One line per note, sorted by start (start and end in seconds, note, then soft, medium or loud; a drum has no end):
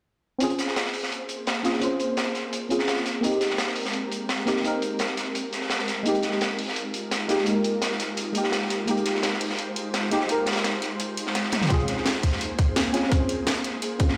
0.38 3.03 A#3 medium
0.38 1.61 C4 medium
0.38 1.62 C#4 medium
0.38 1.63 F4 medium
0.38 3.03 G#4 medium
0.38 3.03 C5 medium
0.38 closed hi-hat medium
0.43 1.64 G#4 medium
0.50 closed hi-hat soft
0.59 snare soft
0.59 closed hi-hat medium
0.68 snare soft
0.76 snare loud
0.76 closed hi-hat medium
0.86 snare soft
0.94 closed hi-hat medium
0.94 open hi-hat medium
1.03 snare soft
1.11 closed hi-hat medium
1.29 closed hi-hat medium
1.47 snare loud
1.47 closed hi-hat medium
1.63 1.78 C4 medium
1.63 1.80 C#4 medium
1.63 1.80 F4 medium
1.63 1.81 G#4 medium
1.63 snare soft
1.63 closed hi-hat medium
1.73 snare soft
1.80 2.67 C4 medium
1.80 2.68 C#4 medium
1.80 2.69 F4 medium
1.80 closed hi-hat medium
1.85 2.70 C5 medium
2.00 closed hi-hat medium
2.17 snare loud
2.17 closed hi-hat medium
2.26 snare soft
2.35 snare soft
2.35 closed hi-hat medium
2.53 closed hi-hat medium
2.69 3.04 C4 medium
2.69 3.04 C#4 medium
2.69 3.05 F4 medium
2.69 3.05 G#4 medium
2.69 closed hi-hat medium
2.79 snare soft
2.88 snare medium
2.88 closed hi-hat medium
2.96 snare soft
3.06 11.66 G#3 medium
3.06 6.03 C4 medium
3.06 6.03 G4 medium
3.06 6.03 A#4 medium
3.06 snare soft
3.06 closed hi-hat medium
3.21 4.44 A#3 medium
3.21 4.44 C4 medium
3.21 4.45 D#4 medium
3.21 closed hi-hat medium
3.26 4.46 G4 medium
3.31 closed hi-hat soft
3.41 snare soft
3.41 closed hi-hat medium
3.50 snare soft
3.58 snare loud
3.58 closed hi-hat medium
3.67 snare soft
3.75 closed hi-hat medium
3.75 open hi-hat medium
3.85 snare soft
3.93 closed hi-hat medium
4.12 closed hi-hat medium
4.29 snare loud
4.29 closed hi-hat medium
4.46 4.61 A#3 medium
4.46 4.62 C4 medium
4.46 4.63 D#4 medium
4.46 4.63 G4 medium
4.46 snare soft
4.46 closed hi-hat medium
4.56 snare soft
4.62 5.49 A#3 medium
4.62 5.50 C4 medium
4.62 5.51 D#4 medium
4.62 closed hi-hat medium
4.67 5.52 A#4 medium
4.82 closed hi-hat medium
4.99 snare loud
4.99 closed hi-hat medium
5.08 snare soft
5.17 snare soft
5.17 closed hi-hat medium
5.35 closed hi-hat medium
5.53 snare soft
5.53 closed hi-hat medium
5.61 snare soft
5.70 snare medium
5.70 closed hi-hat medium
5.79 snare soft
5.88 snare soft
5.88 closed hi-hat medium
6.03 7.26 G#3 medium
6.03 7.27 A#3 medium
6.03 11.66 D#4 medium
6.03 7.27 D#4 medium
6.03 11.66 F4 medium
6.03 11.66 G4 medium
6.03 8.85 A#4 medium
6.03 closed hi-hat medium
6.08 7.28 G4 medium
6.15 closed hi-hat soft
6.23 snare soft
6.23 closed hi-hat medium
6.32 snare soft
6.41 snare loud
6.41 closed hi-hat medium
6.51 snare soft
6.59 closed hi-hat medium
6.59 open hi-hat medium
6.68 snare soft
6.76 closed hi-hat medium
6.94 closed hi-hat medium
7.11 snare medium
7.11 closed hi-hat medium
7.28 7.43 G#3 medium
7.28 7.45 A#3 medium
7.28 7.45 D#4 medium
7.28 7.45 G4 medium
7.28 snare soft
7.28 closed hi-hat medium
7.38 snare soft
7.44 8.31 G#3 medium
7.44 8.32 A#3 medium
7.44 8.33 D#4 medium
7.44 closed hi-hat medium
7.49 8.34 A#4 medium
7.64 closed hi-hat medium
7.82 snare loud
7.82 closed hi-hat medium
7.91 snare soft
8.00 snare soft
8.00 closed hi-hat medium
8.17 closed hi-hat medium
8.32 8.84 G#3 medium
8.32 8.85 A#3 medium
8.32 8.86 D#4 medium
8.32 closed hi-hat medium
8.38 8.87 G4 medium
8.44 snare soft
8.52 snare loud
8.52 closed hi-hat medium
8.62 snare soft
8.70 snare soft
8.70 closed hi-hat medium
8.86 10.08 G#3 medium
8.86 10.09 A#3 medium
8.86 10.10 D#4 medium
8.86 14.17 C5 medium
8.86 closed hi-hat medium
8.91 10.11 G4 medium
8.97 closed hi-hat soft
9.05 snare soft
9.05 closed hi-hat medium
9.15 snare soft
9.23 snare loud
9.23 closed hi-hat medium
9.33 snare soft
9.41 closed hi-hat medium
9.41 open hi-hat medium
9.50 snare soft
9.59 closed hi-hat medium
9.76 closed hi-hat medium
9.94 snare loud
9.94 closed hi-hat medium
10.10 10.25 G#3 medium
10.10 10.27 A#3 medium
10.10 10.27 D#4 medium
10.10 10.28 G4 medium
10.10 snare soft
10.10 closed hi-hat medium
10.21 snare soft
10.27 11.14 G#3 medium
10.27 11.15 A#3 medium
10.27 11.16 D#4 medium
10.27 closed hi-hat medium
10.32 11.17 A#4 medium
10.46 snare medium
10.46 closed hi-hat medium
10.51 snare medium
10.51 closed hi-hat medium
10.56 snare medium
10.56 closed hi-hat medium
10.64 snare loud
10.64 closed hi-hat medium
10.73 snare soft
10.82 snare soft
10.82 closed hi-hat medium
11.00 closed hi-hat medium
11.17 closed hi-hat medium
11.26 snare soft
11.35 snare medium
11.35 closed hi-hat medium
11.43 snare soft
11.52 snare medium
11.52 closed hi-hat medium
11.52 high tom medium
11.61 snare medium
11.61 closed hi-hat medium
11.61 mid tom medium
11.66 12.91 C4 medium
11.66 12.91 C#4 medium
11.66 snare medium
11.66 closed hi-hat medium
11.70 14.17 A#3 medium
11.70 12.92 F4 medium
11.70 14.17 G#4 medium
11.70 12.93 G#4 medium
11.70 kick loud
11.70 closed hi-hat medium
11.80 closed hi-hat soft
11.87 snare soft
11.87 closed hi-hat medium
11.97 snare soft
12.06 snare loud
12.06 closed hi-hat medium
12.14 snare soft
12.23 kick medium
12.23 closed hi-hat medium
12.23 open hi-hat medium
12.32 snare soft
12.41 closed hi-hat medium
12.59 kick medium
12.59 closed hi-hat medium
12.76 snare loud
12.76 closed hi-hat medium
12.93 13.08 C4 medium
12.93 13.09 C#4 medium
12.93 13.10 F4 medium
12.93 13.10 G#4 medium
12.93 snare soft
12.93 closed hi-hat medium
13.03 snare soft
13.09 13.96 C4 medium
13.09 13.97 C#4 medium
13.09 13.98 F4 medium
13.09 kick loud
13.09 closed hi-hat medium
13.14 13.99 C5 medium
13.29 closed hi-hat medium
13.47 snare loud
13.47 closed hi-hat medium
13.56 snare soft
13.64 snare soft
13.64 closed hi-hat medium
13.82 closed hi-hat medium
13.98 14.17 C4 medium
13.98 14.17 C#4 medium
13.98 14.17 F4 medium
13.98 14.17 G#4 medium
13.98 kick loud
13.98 closed hi-hat medium
14.09 snare medium